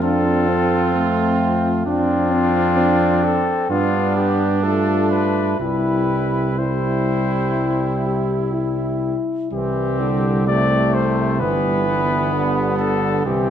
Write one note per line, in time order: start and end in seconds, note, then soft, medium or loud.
0.00 1.82 F2 medium
0.00 1.69 C4 medium
0.00 0.51 D4 medium
0.00 1.83 F4 medium
0.00 1.38 A4 medium
0.50 0.94 C4 medium
0.95 1.85 A3 medium
1.86 3.53 F2 medium
1.86 3.72 C4 medium
1.86 3.52 D4 medium
1.86 2.33 D4 medium
1.86 3.25 F4 medium
2.32 2.79 C4 medium
2.78 3.42 D4 medium
3.24 3.69 A4 medium
3.69 5.56 G2 medium
3.69 4.65 B3 medium
3.69 4.59 D4 medium
3.69 5.56 D4 medium
3.69 4.16 F4 medium
4.17 4.65 G4 medium
4.64 5.59 A3 soft
4.64 5.58 F4 medium
4.64 5.10 A4 medium
5.11 5.59 B4 medium
5.60 9.15 C2 soft
5.60 6.56 G3 soft
5.60 6.47 E4 medium
5.60 6.57 E4 soft
5.60 6.60 B4 medium
6.58 9.16 G3 soft
6.58 8.08 E4 soft
6.58 9.16 E4 soft
6.58 8.55 C5 medium
8.07 8.56 G4 soft
8.54 9.51 E4 soft
9.52 11.42 C2 medium
9.52 10.02 E3 soft
9.52 10.49 G3 soft
9.52 10.50 C4 soft
9.52 10.44 G4 medium
10.00 10.49 D3 medium
10.47 11.43 C3 soft
10.47 11.42 A3 soft
10.47 11.43 A3 soft
10.47 10.95 D5 medium
10.94 11.41 C5 medium
11.39 13.25 G1 medium
11.39 12.35 E3 soft
11.39 11.87 G3 medium
11.39 13.25 B3 medium
11.39 12.78 B4 medium
11.88 13.23 G3 soft
12.33 12.80 D3 medium
12.79 13.28 D3 medium
12.79 13.25 A4 medium
13.26 13.50 C2 medium
13.26 13.50 E3 medium
13.26 13.50 G3 medium
13.26 13.50 C4 medium
13.26 13.50 G4 medium